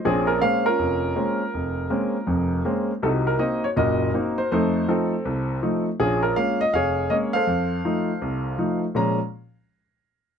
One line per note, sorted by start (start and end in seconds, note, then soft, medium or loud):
0.05 0.37 A#1 medium
0.05 0.37 A#2 medium
0.05 0.41 C4 medium
0.05 0.41 C#4 medium
0.05 0.29 G#4 medium
0.27 0.42 A#4 medium
0.41 0.67 G#3 medium
0.41 0.67 A#3 medium
0.41 0.67 C4 soft
0.41 0.66 C#4 medium
0.41 0.64 F5 loud
0.66 1.15 C#4 medium
0.66 2.62 F4 medium
0.66 2.61 A#4 loud
0.79 1.11 F1 medium
1.16 1.41 G#3 medium
1.16 1.41 A#3 soft
1.16 1.41 C4 soft
1.16 1.41 C#4 medium
1.54 1.86 F1 medium
1.90 2.15 G#3 medium
1.90 2.15 A#3 soft
1.90 2.16 C4 medium
1.90 2.16 C#4 medium
2.27 2.60 F1 medium
2.27 2.59 F2 medium
2.65 2.90 G#3 medium
2.65 2.90 A#3 soft
2.65 2.90 C4 medium
2.65 2.90 C#4 medium
3.02 3.34 C2 medium
3.02 3.34 C3 medium
3.02 3.38 D#4 medium
3.02 3.73 F#4 medium
3.02 3.08 A4 medium
3.27 3.40 A#4 medium
3.39 3.64 A#3 soft
3.39 3.64 C4 soft
3.39 3.64 D#4 medium
3.39 3.61 D#5 medium
3.64 3.69 C#5 medium
3.76 4.08 F#1 medium
3.76 4.08 A#2 medium
3.76 4.47 F#4 medium
3.76 4.47 A#4 medium
3.76 4.11 D#5 medium
4.14 4.39 A#3 medium
4.14 4.39 C4 soft
4.14 4.39 D#4 medium
4.38 4.50 C5 medium
4.51 4.83 F2 medium
4.51 4.83 A3 medium
4.51 4.87 D#4 medium
4.51 4.87 A4 medium
4.51 4.89 C5 medium
4.88 5.13 F3 medium
4.88 5.13 A3 soft
4.88 5.83 C4 medium
4.88 5.13 D#4 medium
4.88 5.82 A4 medium
5.25 5.57 C2 medium
5.62 5.87 F3 medium
5.62 5.87 A3 soft
5.62 5.87 D#4 medium
6.00 6.31 A#1 medium
6.00 6.36 C#4 medium
6.00 6.71 F4 medium
6.00 6.21 G#4 medium
6.23 6.36 A#4 medium
6.36 6.61 G#3 soft
6.36 6.61 A#3 soft
6.36 6.62 C#4 medium
6.36 6.60 F5 medium
6.61 6.73 D#5 medium
6.73 7.05 F1 medium
6.73 7.44 G#4 medium
6.73 7.44 C#5 medium
6.73 7.11 F5 medium
7.10 7.35 G#3 medium
7.10 7.35 A#3 soft
7.10 7.35 C#4 medium
7.10 7.15 D#5 medium
7.33 8.79 A4 medium
7.33 8.79 C5 medium
7.33 8.78 F5 loud
7.47 7.79 F2 medium
7.84 8.09 F3 medium
7.84 8.10 A3 soft
7.84 8.10 D#4 medium
8.22 8.54 C2 medium
8.58 8.83 F3 medium
8.58 8.83 A3 soft
8.58 8.84 D#4 medium
8.95 9.17 A#2 medium
8.95 9.17 F3 medium
8.95 9.17 G#3 medium
8.95 9.17 C#4 medium
8.95 9.18 A#5 medium